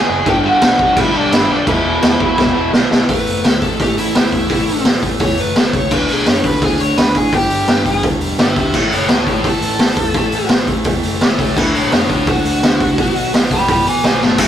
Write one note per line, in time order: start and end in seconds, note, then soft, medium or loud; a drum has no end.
0.00 0.10 E2 medium
0.00 0.25 G#4 medium
0.00 0.29 G#5 medium
0.09 0.21 F#1 loud
0.09 0.26 E2 medium
0.09 0.26 B2 medium
0.09 0.27 E3 loud
0.26 0.49 G1 loud
0.26 0.42 G2 loud
0.26 1.14 G2 medium
0.26 0.43 D3 loud
0.26 1.15 D3 loud
0.26 0.43 G3 loud
0.26 1.14 G3 loud
0.26 0.33 G4 medium
0.26 0.35 G5 loud
0.26 kick loud
0.26 crash medium
0.43 0.60 G2 loud
0.43 0.61 D3 medium
0.43 0.62 G3 loud
0.43 0.95 F#4 medium
0.48 1.00 F#5 loud
0.61 0.84 B1 loud
0.61 0.78 G2 loud
0.61 0.78 D3 loud
0.61 0.79 G3 loud
0.61 snare loud
0.61 crash medium
0.79 0.94 G2 medium
0.79 0.95 D3 loud
0.79 0.96 G3 loud
0.79 kick medium
0.95 1.08 B1 loud
0.95 1.12 G2 medium
0.95 1.12 D3 medium
0.95 1.13 G3 loud
0.95 1.14 E4 medium
0.95 kick loud
0.95 crash medium
1.00 1.18 E5 medium
1.13 1.26 B1 medium
1.13 1.30 G2 medium
1.13 1.31 D3 loud
1.13 1.32 D3 medium
1.13 1.32 G3 loud
1.13 1.32 G3 medium
1.13 1.32 D4 medium
1.17 1.31 G2 medium
1.17 1.34 D5 medium
1.32 1.43 G1 loud
1.32 1.48 G2 medium
1.32 1.67 G2 medium
1.32 1.48 D3 loud
1.32 1.68 D3 medium
1.32 1.49 G3 loud
1.32 1.68 G3 medium
1.32 1.50 E4 medium
1.32 1.50 E5 medium
1.32 snare loud
1.32 crash medium
1.49 1.61 B1 medium
1.49 1.66 G2 medium
1.49 1.66 D3 medium
1.49 1.67 G3 loud
1.49 1.57 D4 medium
1.54 1.59 D5 medium
1.66 1.79 E1 loud
1.66 1.82 E2 loud
1.66 2.55 E2 loud
1.66 1.84 B2 loud
1.66 2.56 B2 medium
1.66 1.84 E3 loud
1.66 2.70 E4 medium
1.66 2.71 E5 medium
1.66 kick loud
1.66 crash medium
1.70 2.55 E3 loud
1.83 1.97 E1 medium
1.83 2.00 E2 medium
1.83 2.01 B2 loud
1.83 2.02 E3 loud
2.01 2.15 E1 medium
2.01 2.17 E2 medium
2.01 2.18 B2 loud
2.01 2.19 E3 loud
2.01 snare loud
2.01 crash medium
2.18 2.32 E1 medium
2.18 2.35 E2 medium
2.18 2.36 B2 loud
2.18 2.37 E3 loud
2.18 kick loud
2.37 2.49 E1 loud
2.37 2.53 E2 medium
2.37 2.54 B2 loud
2.37 2.55 E3 loud
2.37 kick loud
2.37 snare medium
2.55 2.68 E1 medium
2.55 2.71 E2 medium
2.55 2.73 E2 medium
2.55 2.72 B2 medium
2.55 2.73 B2 medium
2.55 2.72 E3 loud
2.55 2.73 E3 medium
2.72 2.85 B1 loud
2.72 2.89 E2 loud
2.72 3.09 E2 medium
2.72 2.90 B2 loud
2.72 3.08 B2 medium
2.72 2.90 E3 loud
2.72 snare loud
2.77 3.09 E3 medium
2.90 3.03 B1 medium
2.90 3.07 E2 medium
2.90 3.08 B2 medium
2.90 3.08 E3 medium
2.90 snare loud
3.08 3.25 A1 medium
3.08 3.80 A2 medium
3.08 3.82 E3 medium
3.08 3.83 A3 medium
3.08 3.61 B4 loud
3.08 kick loud
3.08 open hi-hat medium
3.27 3.43 F#1 medium
3.27 open hi-hat medium
3.44 3.61 D2 medium
3.44 snare loud
3.44 open hi-hat medium
3.62 3.78 A1 medium
3.62 3.79 A4 medium
3.62 kick medium
3.62 open hi-hat medium
3.79 3.95 A1 loud
3.79 4.49 A2 medium
3.79 4.51 E3 medium
3.79 4.53 A3 medium
3.79 3.98 G4 medium
3.79 kick loud
3.79 open hi-hat medium
3.98 4.13 A1 medium
3.98 4.15 E4 medium
3.98 open hi-hat medium
4.14 4.30 A1 medium
4.14 4.84 E4 loud
4.14 snare loud
4.14 open hi-hat medium
4.32 4.48 E2 medium
4.32 kick medium
4.32 open hi-hat medium
4.50 4.66 A1 loud
4.50 5.18 A2 medium
4.50 5.19 E3 loud
4.50 5.22 A3 loud
4.50 kick loud
4.50 open hi-hat medium
4.67 4.84 A1 medium
4.67 open hi-hat medium
4.85 5.01 A1 medium
4.85 snare loud
4.85 open hi-hat medium
5.02 5.19 A1 medium
5.02 kick medium
5.02 open hi-hat medium
5.20 5.36 E2 loud
5.20 5.90 A2 medium
5.20 5.90 E3 medium
5.20 5.91 A3 medium
5.20 5.40 C#5 loud
5.20 kick loud
5.20 open hi-hat medium
5.37 5.54 F#1 medium
5.37 5.58 B4 medium
5.37 open hi-hat medium
5.56 5.72 A1 medium
5.56 5.74 A4 medium
5.56 snare loud
5.56 open hi-hat medium
5.73 5.90 C#2 medium
5.73 5.92 C#5 loud
5.73 kick medium
5.73 open hi-hat medium
5.91 6.07 D2 loud
5.91 6.62 D3 medium
5.91 6.62 A3 medium
5.91 6.65 D4 medium
5.91 6.12 B4 medium
5.91 kick loud
5.91 crash medium
6.08 6.25 B1 medium
6.08 6.28 G#4 medium
6.08 open hi-hat medium
6.26 6.43 F#2 medium
6.26 6.45 C#5 loud
6.26 snare loud
6.26 open hi-hat medium
6.44 6.60 D2 medium
6.44 6.64 B4 medium
6.44 kick medium
6.44 open hi-hat medium
6.62 6.78 D2 loud
6.62 7.32 D3 medium
6.62 7.33 A3 medium
6.62 7.33 D4 medium
6.62 6.80 G#4 medium
6.62 kick loud
6.62 open hi-hat medium
6.79 6.95 D2 medium
6.79 6.97 C#5 loud
6.79 open hi-hat medium
6.97 7.13 D2 medium
6.97 7.17 B4 medium
6.97 snare loud
6.97 open hi-hat medium
7.15 7.31 A2 medium
7.15 7.33 G#4 medium
7.15 kick medium
7.15 open hi-hat medium
7.32 7.49 G1 medium
7.32 8.03 G2 medium
7.32 8.03 D3 medium
7.32 8.04 G3 loud
7.32 8.02 G4 loud
7.32 kick loud
7.32 open hi-hat medium
7.49 7.66 G1 medium
7.49 open hi-hat medium
7.68 7.84 G1 medium
7.68 snare loud
7.68 open hi-hat medium
7.85 8.01 G1 medium
7.85 kick medium
7.85 open hi-hat medium
8.03 8.19 D2 loud
8.03 8.73 G2 medium
8.03 8.74 D3 medium
8.03 8.75 G3 medium
8.03 kick loud
8.03 open hi-hat medium
8.20 8.37 E1 medium
8.20 open hi-hat medium
8.38 8.54 G1 medium
8.38 8.57 G4 medium
8.38 8.57 E5 loud
8.38 snare loud
8.38 open hi-hat medium
8.56 8.72 D2 medium
8.56 8.74 G4 medium
8.56 8.75 E5 medium
8.56 kick loud
8.56 open hi-hat medium
8.74 8.90 A1 medium
8.74 9.44 A2 medium
8.74 9.46 E3 medium
8.74 9.46 A3 medium
8.74 8.93 C#5 medium
8.74 8.94 E5 medium
8.74 kick loud
8.74 crash medium
8.91 9.08 F#1 medium
8.91 9.10 A4 medium
8.91 9.10 C#5 medium
8.91 open hi-hat medium
9.09 9.25 D2 medium
9.09 9.27 A4 medium
9.09 9.28 C#5 medium
9.09 snare loud
9.09 open hi-hat medium
9.27 9.43 A1 medium
9.27 9.45 A4 medium
9.27 kick medium
9.27 open hi-hat medium
9.31 9.46 C#5 medium
9.44 9.60 A1 loud
9.44 10.13 A2 medium
9.44 10.15 E3 medium
9.44 10.17 A3 medium
9.44 kick loud
9.44 open hi-hat medium
9.48 10.50 A4 loud
9.61 9.78 A1 medium
9.61 open hi-hat medium
9.79 9.96 A1 medium
9.79 snare loud
9.79 open hi-hat medium
9.97 10.13 E2 medium
9.97 kick loud
9.97 open hi-hat medium
10.14 10.31 A1 medium
10.14 10.84 A2 medium
10.14 10.86 E3 medium
10.14 10.87 A3 loud
10.14 kick loud
10.14 open hi-hat medium
10.32 10.48 A1 medium
10.32 open hi-hat medium
10.49 10.66 A1 medium
10.49 snare loud
10.49 open hi-hat medium
10.67 10.84 A1 medium
10.67 kick medium
10.67 open hi-hat medium
10.84 11.01 E2 loud
10.84 11.56 A2 medium
10.84 11.56 E3 medium
10.84 11.56 A3 medium
10.84 kick loud
10.84 open hi-hat medium
11.02 11.19 F#1 medium
11.02 open hi-hat medium
11.20 11.37 A1 medium
11.20 11.39 C#5 medium
11.20 11.40 E5 medium
11.20 snare loud
11.20 open hi-hat medium
11.39 11.55 C#2 medium
11.39 11.56 C#5 medium
11.39 11.57 E5 loud
11.39 kick medium
11.39 open hi-hat medium
11.56 11.73 D2 loud
11.56 12.26 D3 loud
11.56 12.27 A3 loud
11.56 12.28 D4 loud
11.56 11.75 B4 medium
11.56 11.76 E5 loud
11.56 kick loud
11.56 crash loud
11.74 11.90 B1 medium
11.74 11.90 A4 medium
11.74 11.90 C#5 medium
11.74 open hi-hat medium
11.91 12.08 F#2 loud
11.91 12.08 A4 medium
11.91 12.09 C#5 medium
11.91 snare loud
11.91 open hi-hat medium
12.09 12.26 D2 loud
12.09 12.26 A4 medium
12.09 12.28 C#5 medium
12.09 kick medium
12.09 open hi-hat medium
12.27 12.43 D2 loud
12.27 12.98 D3 medium
12.27 12.98 A3 medium
12.27 12.99 D4 medium
12.27 13.31 F#4 loud
12.27 kick loud
12.27 open hi-hat medium
12.45 12.61 D2 medium
12.45 open hi-hat medium
12.63 12.79 D2 medium
12.63 snare loud
12.63 open hi-hat medium
12.80 12.96 C#2 loud
12.80 kick loud
12.80 open hi-hat medium
12.98 13.14 B1 loud
12.98 13.67 B2 medium
12.98 13.68 F#3 medium
12.98 13.68 B3 loud
12.98 kick loud
12.98 open hi-hat medium
13.16 13.32 B1 medium
13.16 open hi-hat medium
13.34 13.50 B1 medium
13.34 snare loud
13.34 open hi-hat medium
13.51 13.67 B1 medium
13.51 13.68 G5 medium
13.51 13.69 B5 medium
13.51 kick medium
13.51 open hi-hat medium
13.68 13.84 F#2 loud
13.68 14.38 B2 medium
13.68 14.38 F#3 medium
13.68 14.39 B3 medium
13.68 13.86 G5 medium
13.68 13.87 B5 medium
13.68 kick loud
13.68 open hi-hat medium
13.86 14.02 A1 medium
13.86 14.03 B4 medium
13.86 14.05 G#5 medium
13.86 open hi-hat medium
14.04 14.20 B1 medium
14.04 14.38 A3 medium
14.04 14.41 A4 loud
14.04 14.21 B4 medium
14.04 14.23 G#5 medium
14.04 snare loud
14.04 open hi-hat medium
14.21 14.37 G#1 loud
14.21 14.39 A5 loud
14.21 snare medium
14.38 14.48 A1 loud
14.38 14.48 A2 loud
14.38 14.48 E3 loud
14.38 14.48 G#3 medium
14.38 14.48 A3 loud
14.38 14.48 G#4 loud
14.38 kick loud
14.38 crash loud
14.38 crash medium